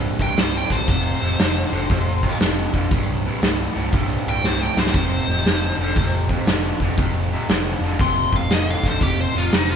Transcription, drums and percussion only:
0.19 kick
0.37 snare, open hi-hat
0.70 kick
0.88 kick, open hi-hat
1.39 snare, open hi-hat
1.90 kick, open hi-hat
2.23 kick
2.40 snare, open hi-hat
2.74 kick
2.91 kick, open hi-hat
3.42 snare, open hi-hat
3.92 kick, open hi-hat
4.44 snare
4.77 snare
4.87 snare
4.94 kick, open hi-hat
5.45 snare, open hi-hat
5.96 kick, open hi-hat
6.29 kick
6.46 snare, open hi-hat
6.80 kick
6.98 kick, open hi-hat
7.49 snare, open hi-hat
7.99 kick, open hi-hat
8.33 kick
8.50 snare, open hi-hat
8.83 kick
9.00 kick, open hi-hat
9.52 snare, open hi-hat

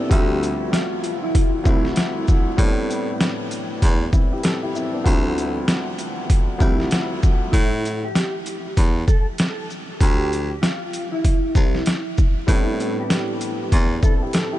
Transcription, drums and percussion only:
0.11 kick, closed hi-hat
0.43 closed hi-hat, shaker
0.73 snare, closed hi-hat
1.04 closed hi-hat, shaker
1.35 kick, closed hi-hat
1.65 kick, shaker
1.85 snare
1.96 snare, closed hi-hat
2.28 kick, shaker
2.58 kick, closed hi-hat
2.90 closed hi-hat, shaker
3.21 snare, closed hi-hat
3.51 closed hi-hat, shaker
3.82 kick, closed hi-hat
4.13 kick, shaker
4.43 snare, closed hi-hat
4.75 shaker
5.06 kick, closed hi-hat
5.38 closed hi-hat, shaker
5.68 snare, closed hi-hat
5.99 closed hi-hat, shaker
6.30 kick, closed hi-hat
6.60 kick, shaker
6.80 snare
6.91 snare, closed hi-hat
7.23 kick, shaker
7.53 kick, closed hi-hat
7.85 closed hi-hat, shaker
8.15 snare, closed hi-hat
8.46 closed hi-hat, shaker
8.77 kick, closed hi-hat
9.08 kick, shaker
9.38 snare, closed hi-hat
9.70 shaker
10.01 kick, closed hi-hat
10.33 closed hi-hat, shaker
10.63 snare, closed hi-hat
10.93 closed hi-hat, shaker
11.25 kick, closed hi-hat
11.55 kick, shaker
11.75 snare
11.86 snare, closed hi-hat
12.18 kick, shaker
12.48 kick, closed hi-hat
12.80 closed hi-hat, shaker
13.10 snare, closed hi-hat
13.41 closed hi-hat, shaker
13.72 kick, closed hi-hat
14.03 kick, shaker
14.33 snare, closed hi-hat

